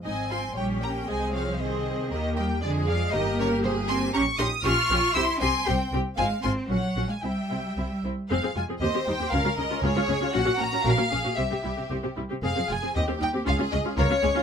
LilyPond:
<<
  \new Staff \with { instrumentName = "Violin section" } { \time 2/4 \key aes \major \tempo 4 = 117 aes''8 c'''8 g''8 bes''8 | aes''8 f''8 ees''4 | ees''8 g''8 d''8 f''8 | ees''8 des''8 c''8 c'''8 |
\key c \phrygian des'''8 ees'''8 f'''4 | e'''8 c'''8 c'''8 r8 | aes''8 c'''8 ges''8. aes''16 | g''4. r8 |
f''8 aes''8 ees''8 g''8 | f''8 ees''8 des''4 | ges''8 bes''8 f''4 | e''4 r4 |
f''8 aes''8 ees''8 g''8 | f''8 ees''8 des''4 | }
  \new Staff \with { instrumentName = "Violin section" } { \time 2/4 \key aes \major ees''8 aes''8 des''8 g''8 | ees''8 des''8 c''4 | bes'8 ees''8 aes'8 d''8 | bes'8 bes'8 aes'8 aes''8 |
\key c \phrygian bes''8 c'''8 des'''4 | c'''8 aes''8 g''8 r8 | f''8 aes''8 des''8. f''16 | e''4. r8 |
r4 c''4 | bes'4 aes'4 | ges'4 bes'8 aes'8 | g'4. r8 |
aes'4 g'4 | aes'4 bes'8 aes'8 | }
  \new Staff \with { instrumentName = "Viola section" } { \time 2/4 \key aes \major << { ees'8 f'8 g'4 | aes'4 aes'4 | g'4 aes'4 | g'2 |
\key c \phrygian g'8 g'8 g'8 g'8 | g'8 g'8 g'8 g'8 | f'8 f'8 ges'8 ges'8 | e'8 e'8 e'8 e'8 |
aes'16 aes'16 f'16 aes'16 g'16 g'16 ees'16 g'16 | f'16 f'16 des'16 f'16 f'16 f'16 des'16 f'16 | ges'16 ges'16 des'16 ges'16 ges'16 ges'16 des'16 ges'16 | g'16 g'16 e'16 g'16 g'16 g'16 e'16 g'16 |
aes'16 aes'16 f'16 aes'16 g'16 g'16 ees'16 g'16 | f'16 f'16 des'16 f'16 f'16 f'16 des'16 f'16 | } \\ { c'4 des'4 | c'4 c'4 | bes4 aes4 | bes2 |
des'8 des'8 des'8 des'8 | c'8 c'8 c'8 c'8 | c'8 c'8 des'8 des'8 | c'8 c'8 c'8 c'8 |
c'16 c'16 aes16 c'16 c'16 c'16 g16 c'16 | des'16 des'16 aes16 des'16 des'16 des'16 aes16 des'16 | des'16 des'16 bes16 des'16 des'16 des'16 bes16 des'16 | c'16 c'16 g16 c'16 c'16 c'16 g16 c'16 |
c'16 c'16 aes16 c'16 c'16 c'16 g16 c'16 | des'16 des'16 aes16 des'16 des'16 des'16 aes16 des'16 | } >> }
  \new Staff \with { instrumentName = "Cello section" } { \clef bass \time 2/4 \key aes \major aes8 c'8 g8 bes8 | aes8 f8 ees4 | ees8 g8 d8 f8 | ees8 des8 c8 c'8 |
\key c \phrygian des'8 ees'8 f'4 | e'8 c'8 c'8 r8 | aes8 c'8 ges8. aes16 | g4. r8 |
f,16 f,16 f,16 f,16 ees,16 ees,16 ees,16 ees,16 | des,16 des,16 des,16 des,16 des,16 des,16 des,16 des,16 | bes,16 bes,16 bes,16 bes,16 bes,16 bes,16 bes,16 bes,16 | c16 c16 c16 c16 c16 c16 c16 c16 |
f,16 f,16 f,16 f,16 ees,16 ees,16 ees,16 ees,16 | des,16 des,16 des,16 des,16 des,16 des,16 des,16 des,16 | }
  \new Staff \with { instrumentName = "Double bass section" } { \clef bass \time 2/4 \key aes \major aes,,4 bes,,4 | c,2 | ees,4 f,4 | g,,2 |
\key c \phrygian bes,,8 bes,,8 bes,,8 bes,,8 | c,8 c,8 c,8 c,8 | aes,,8 aes,,8 bes,,8 bes,,8 | c,8 c,8 c,8 c,8 |
f,,16 r16 f,,16 r16 ees,16 r16 ees,16 r16 | des,16 r16 des,16 r16 des,16 r16 des,16 r16 | bes,,16 r16 bes,,16 r16 bes,,16 r16 bes,,16 r16 | c,16 r16 c,16 r16 c,16 r16 c,16 r16 |
f,,16 r16 f,,16 r16 ees,16 r16 ees,16 r16 | des,16 r16 des,16 r16 des,16 r16 des,16 r16 | }
>>